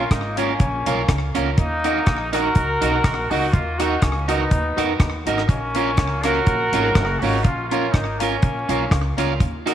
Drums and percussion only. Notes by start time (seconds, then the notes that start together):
0.11 kick, cross-stick, closed hi-hat
0.37 closed hi-hat
0.60 kick, closed hi-hat
0.86 closed hi-hat
1.09 kick, cross-stick, closed hi-hat
1.35 closed hi-hat
1.58 kick, closed hi-hat
1.84 closed hi-hat
2.06 kick, cross-stick, closed hi-hat
2.33 closed hi-hat
2.55 kick, closed hi-hat
2.82 closed hi-hat
3.04 kick, cross-stick, closed hi-hat
3.31 open hi-hat
3.53 kick, closed hi-hat
3.80 closed hi-hat
4.02 kick, cross-stick, closed hi-hat
4.29 closed hi-hat
4.51 kick, closed hi-hat
4.78 closed hi-hat
5.00 kick, cross-stick, closed hi-hat
5.27 closed hi-hat
5.38 cross-stick
5.49 kick, closed hi-hat
5.75 closed hi-hat
5.97 kick, cross-stick, closed hi-hat
6.24 cross-stick, closed hi-hat
6.46 kick, closed hi-hat
6.73 closed hi-hat
6.95 kick, cross-stick, closed hi-hat
7.22 open hi-hat
7.44 kick, closed hi-hat
7.71 closed hi-hat
7.94 kick, cross-stick, closed hi-hat
8.20 closed hi-hat
8.42 kick, closed hi-hat
8.69 closed hi-hat
8.91 kick, cross-stick, closed hi-hat
9.18 closed hi-hat
9.40 kick, closed hi-hat
9.67 closed hi-hat